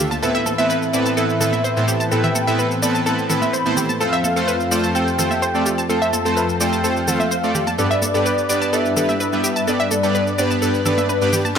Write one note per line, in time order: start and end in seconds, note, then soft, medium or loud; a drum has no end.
0.00 0.19 D2 medium
0.00 0.19 D3 medium
0.00 0.19 F4 medium
0.00 0.19 A4 medium
0.00 0.13 F5 loud
0.11 0.16 A5 medium
0.11 high conga medium
0.11 cabasa soft
0.23 3.97 A2 medium
0.23 0.31 A2 medium
0.23 3.97 E3 medium
0.23 0.31 B3 medium
0.23 7.74 C4 medium
0.23 0.31 C4 medium
0.23 0.31 E4 medium
0.23 0.31 A4 medium
0.23 0.31 B4 medium
0.23 3.97 B4 medium
0.23 1.08 E5 loud
0.23 cabasa soft
0.35 0.46 E5 loud
0.35 cabasa soft
0.46 0.54 A4 medium
0.46 high conga medium
0.46 cabasa medium
0.58 0.71 A2 medium
0.58 0.71 B3 medium
0.58 0.71 C4 medium
0.58 0.71 E4 medium
0.58 0.71 A4 medium
0.58 0.71 B4 loud
0.58 0.63 E5 medium
0.58 cabasa soft
0.70 0.78 B4 medium
0.70 cabasa soft
0.82 cabasa soft
0.93 1.06 A2 medium
0.93 1.06 B3 medium
0.93 1.06 C4 medium
0.93 1.06 E4 medium
0.93 1.06 A4 medium
0.93 1.06 B4 loud
0.93 1.02 D5 medium
0.93 cabasa medium
1.06 1.10 A5 medium
1.06 cabasa soft
1.17 1.25 A2 medium
1.17 1.25 B3 medium
1.17 1.25 C4 medium
1.17 1.25 E4 medium
1.17 1.25 A4 medium
1.17 1.25 B4 medium
1.17 2.02 E5 medium
1.17 cabasa soft
1.30 cabasa soft
1.41 1.54 A2 medium
1.41 1.54 B3 medium
1.41 1.54 C4 medium
1.41 1.54 E4 medium
1.41 1.49 A4 medium
1.41 1.54 A4 medium
1.41 1.54 B4 medium
1.41 low conga medium
1.41 cabasa medium
1.53 1.64 E5 medium
1.53 high conga medium
1.53 cabasa soft
1.64 1.72 C5 medium
1.64 cabasa soft
1.77 1.84 A2 medium
1.77 1.84 B3 medium
1.77 1.84 C4 medium
1.77 1.84 E4 medium
1.77 1.84 A4 medium
1.77 1.84 C5 medium
1.77 cabasa soft
1.88 1.93 G4 medium
1.88 cabasa medium
2.00 2.05 A5 medium
2.00 cabasa soft
2.12 2.20 A2 medium
2.12 2.20 B3 medium
2.12 2.20 C4 medium
2.12 2.20 E4 medium
2.12 2.20 A4 medium
2.12 2.20 B4 medium
2.12 2.73 G5 loud
2.12 cabasa soft
2.24 2.35 E5 loud
2.24 low conga medium
2.24 cabasa soft
2.35 2.43 A4 medium
2.35 high conga medium
2.35 cabasa medium
2.47 2.60 A2 medium
2.47 2.60 B3 medium
2.47 2.60 C4 medium
2.47 2.60 E4 medium
2.47 2.60 A4 medium
2.47 2.60 B4 loud
2.47 2.52 E5 medium
2.47 cabasa soft
2.59 2.67 B4 medium
2.59 cabasa soft
2.71 cabasa soft
2.82 2.95 A2 medium
2.82 2.95 B3 medium
2.82 2.95 C4 medium
2.82 2.95 E4 medium
2.82 2.95 A4 medium
2.82 2.95 B4 loud
2.82 2.90 D5 medium
2.82 3.25 A5 medium
2.82 cabasa medium
2.95 2.99 A5 medium
2.95 cabasa soft
3.06 3.14 A2 medium
3.06 3.14 B3 medium
3.06 3.14 C4 medium
3.06 3.14 E4 medium
3.06 3.14 A4 medium
3.06 3.14 B4 medium
3.06 cabasa soft
3.19 cabasa soft
3.30 3.43 A2 medium
3.30 3.43 B3 medium
3.30 3.43 C4 medium
3.30 3.43 E4 medium
3.30 3.38 A4 medium
3.30 3.43 A4 medium
3.30 3.43 B4 medium
3.30 3.91 B5 loud
3.30 low conga medium
3.30 cabasa medium
3.42 3.53 E5 medium
3.42 high conga medium
3.42 cabasa soft
3.53 3.61 C5 medium
3.53 cabasa soft
3.66 3.73 A2 medium
3.66 3.73 B3 medium
3.66 3.73 C4 medium
3.66 3.73 E4 medium
3.66 3.73 A4 medium
3.66 3.73 C5 loud
3.66 cabasa soft
3.77 3.82 G4 medium
3.77 low conga medium
3.77 cabasa medium
3.89 3.94 A5 medium
3.89 high conga medium
3.89 cabasa soft
4.00 7.75 F2 medium
4.00 7.75 F3 medium
4.00 4.09 A3 medium
4.00 4.09 C4 medium
4.00 4.09 F4 medium
4.00 7.75 A4 medium
4.00 4.09 A4 medium
4.00 4.09 C5 medium
4.00 4.86 F5 loud
4.00 cabasa soft
4.13 4.24 E5 loud
4.13 cabasa soft
4.24 4.32 A4 medium
4.24 high conga medium
4.24 cabasa medium
4.36 4.49 A3 medium
4.36 4.49 C4 medium
4.36 4.49 F4 medium
4.36 4.44 A4 medium
4.36 4.49 A4 medium
4.36 4.49 C5 loud
4.36 cabasa soft
4.48 4.56 B4 medium
4.48 cabasa soft
4.60 cabasa soft
4.71 4.84 A3 medium
4.71 4.84 C4 medium
4.71 4.84 F4 medium
4.71 4.84 A4 medium
4.71 4.84 C5 loud
4.71 4.79 D5 medium
4.71 cabasa medium
4.84 4.88 A5 medium
4.84 cabasa soft
4.95 5.03 A3 medium
4.95 5.03 C4 medium
4.95 5.03 F4 medium
4.95 5.03 A4 medium
4.95 5.03 C5 medium
4.95 5.80 G5 loud
4.95 cabasa soft
5.08 cabasa soft
5.19 5.32 A3 medium
5.19 5.32 C4 medium
5.19 5.32 F4 medium
5.19 5.27 A4 medium
5.19 5.32 A4 medium
5.19 5.32 C5 medium
5.19 low conga medium
5.19 cabasa medium
5.31 5.42 E5 medium
5.31 high conga medium
5.31 cabasa soft
5.42 5.50 C5 medium
5.42 cabasa soft
5.54 5.62 A3 medium
5.54 5.62 C4 medium
5.54 5.62 F4 medium
5.54 5.62 A4 medium
5.54 5.62 D5 loud
5.54 cabasa soft
5.66 5.71 G4 medium
5.66 cabasa medium
5.78 5.83 A5 medium
5.78 cabasa soft
5.89 5.98 A3 medium
5.89 5.98 C4 medium
5.89 5.98 F4 medium
5.89 5.98 A4 medium
5.89 5.98 C5 medium
5.89 6.62 A5 loud
5.89 cabasa soft
6.02 6.13 E5 loud
6.02 cabasa soft
6.13 6.21 A4 medium
6.13 high conga medium
6.13 cabasa medium
6.25 6.38 A3 medium
6.25 6.38 C4 medium
6.25 6.38 F4 medium
6.25 6.33 A4 medium
6.25 6.38 A4 medium
6.25 6.38 C5 loud
6.25 cabasa soft
6.37 6.45 B4 medium
6.37 cabasa soft
6.49 cabasa soft
6.60 6.73 A3 medium
6.60 6.73 C4 medium
6.60 6.73 F4 medium
6.60 6.73 A4 medium
6.60 6.73 C5 loud
6.60 6.68 D5 medium
6.60 7.09 G5 medium
6.60 cabasa medium
6.73 6.77 A5 medium
6.73 cabasa soft
6.84 6.92 A3 medium
6.84 6.92 C4 medium
6.84 6.92 F4 medium
6.84 6.92 A4 medium
6.84 6.92 C5 medium
6.84 cabasa soft
6.96 cabasa soft
7.08 7.21 A3 medium
7.08 7.21 C4 medium
7.08 7.21 F4 medium
7.08 7.16 A4 medium
7.08 7.21 A4 medium
7.08 7.21 C5 medium
7.08 7.69 F5 loud
7.08 low conga medium
7.08 cabasa medium
7.20 7.31 E5 medium
7.20 high conga medium
7.20 cabasa soft
7.31 7.39 C5 medium
7.31 cabasa soft
7.43 7.51 A3 medium
7.43 7.51 C4 medium
7.43 7.51 F4 medium
7.43 7.51 A4 medium
7.43 7.51 D5 loud
7.43 cabasa soft
7.55 7.60 G4 medium
7.55 low conga medium
7.55 cabasa medium
7.67 7.72 A5 medium
7.67 high conga medium
7.67 cabasa soft
7.78 7.87 G2 medium
7.78 11.53 G2 medium
7.78 11.53 G3 medium
7.78 7.87 B3 medium
7.78 7.87 D4 medium
7.78 11.53 D4 medium
7.78 7.87 G4 medium
7.78 7.87 A4 medium
7.78 11.53 B4 medium
7.78 7.87 B4 medium
7.78 8.74 D5 loud
7.78 7.87 D5 medium
7.78 cabasa soft
7.91 8.02 E5 loud
7.91 cabasa soft
8.02 8.10 A4 medium
8.02 high conga medium
8.02 cabasa medium
8.14 8.27 G2 medium
8.14 8.27 B3 medium
8.14 8.27 D4 medium
8.14 8.27 G4 medium
8.14 8.22 A4 medium
8.14 8.27 B4 medium
8.14 8.27 D5 loud
8.14 cabasa soft
8.26 8.34 B4 medium
8.26 cabasa soft
8.38 cabasa soft
8.49 8.62 G2 medium
8.49 8.62 B3 medium
8.49 8.62 D4 medium
8.49 8.62 G4 medium
8.49 8.62 B4 medium
8.49 8.57 D5 medium
8.49 8.62 D5 loud
8.49 cabasa medium
8.62 8.66 A5 medium
8.62 cabasa soft
8.73 8.81 G2 medium
8.73 8.81 B3 medium
8.73 8.81 D4 medium
8.73 8.81 G4 medium
8.73 8.81 A4 medium
8.73 8.81 B4 medium
8.73 8.81 D5 medium
8.73 9.69 E5 loud
8.73 cabasa soft
8.85 cabasa soft
8.97 9.10 G2 medium
8.97 9.10 B3 medium
8.97 9.10 D4 medium
8.97 9.10 G4 medium
8.97 9.05 A4 medium
8.97 9.10 B4 medium
8.97 9.10 D5 medium
8.97 low conga medium
8.97 cabasa medium
9.09 9.20 E5 medium
9.09 high conga medium
9.09 cabasa soft
9.20 9.28 B4 medium
9.20 cabasa soft
9.32 9.40 G2 medium
9.32 9.40 B3 medium
9.32 9.40 D4 medium
9.32 9.40 G4 medium
9.32 9.40 B4 medium
9.32 9.40 E5 loud
9.32 cabasa soft
9.44 9.49 G4 medium
9.44 cabasa medium
9.56 9.61 A5 medium
9.56 cabasa soft
9.67 9.76 G2 medium
9.67 9.76 B3 medium
9.67 9.76 D4 medium
9.67 9.76 G4 medium
9.67 9.76 A4 medium
9.67 9.76 B4 medium
9.67 9.76 D5 medium
9.67 10.40 D5 loud
9.67 cabasa soft
9.80 9.91 E5 loud
9.80 cabasa soft
9.91 9.99 A4 medium
9.91 high conga medium
9.91 cabasa medium
10.03 10.16 G2 medium
10.03 10.16 B3 medium
10.03 10.16 D4 medium
10.03 10.16 G4 medium
10.03 10.11 A4 medium
10.03 10.16 B4 medium
10.03 10.16 D5 loud
10.03 cabasa soft
10.15 10.23 B4 medium
10.15 cabasa soft
10.27 cabasa soft
10.38 10.51 G2 medium
10.38 10.51 B3 medium
10.38 10.51 D4 medium
10.38 10.51 G4 medium
10.38 10.81 B4 medium
10.38 10.51 B4 medium
10.38 10.51 D5 loud
10.38 10.46 D5 medium
10.38 cabasa medium
10.51 10.55 A5 medium
10.51 cabasa soft
10.62 10.70 G2 medium
10.62 10.70 B3 medium
10.62 10.70 D4 medium
10.62 10.70 G4 medium
10.62 10.70 A4 medium
10.62 10.70 B4 medium
10.62 10.70 D5 medium
10.62 swell medium
10.62 cabasa soft
10.74 cabasa soft
10.86 10.94 G2 medium
10.86 10.94 B3 medium
10.86 10.94 D4 medium
10.86 10.94 G4 medium
10.86 10.94 A4 medium
10.86 10.94 B4 medium
10.86 11.47 B4 loud
10.86 10.94 D5 medium
10.86 low conga medium
10.86 cabasa medium
10.98 11.09 E5 medium
10.98 high conga medium
10.98 cabasa soft
11.09 11.17 B4 medium
11.09 cabasa soft
11.21 11.29 G2 medium
11.21 11.29 B3 medium
11.21 11.29 D4 medium
11.21 11.29 G4 medium
11.21 11.29 B4 medium
11.21 11.29 D5 loud
11.21 cabasa soft
11.33 11.38 G4 medium
11.33 low conga medium
11.33 cabasa medium
11.45 11.50 A5 medium
11.45 high conga medium
11.45 cabasa soft